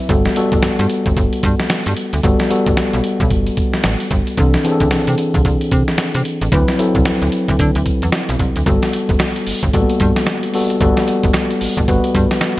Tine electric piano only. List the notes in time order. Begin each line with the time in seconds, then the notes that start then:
Already playing: F#3 C4 E4 B4 E5
0.09 G3 B3 F#4 A4
0.36 G3 B3 F#4 A4
2.23 G3 B3 F#4 A4
2.50 G3 B3 F#4 A4
4.37 E3 C4 D4 A4
4.64 E3 C4 D4 G#4
4.72 A4
6.52 F#3 C4 E4 B4
6.79 F#3 C4 E4 A4
8.66 G3 B3 F#4 A4
9.73 G3 A#3 F#4 A4
9.80 B3
10.54 G3 B3 F#4 A4
10.81 G3 B3 F#4 A4
11.88 G3 B3 F#4 B4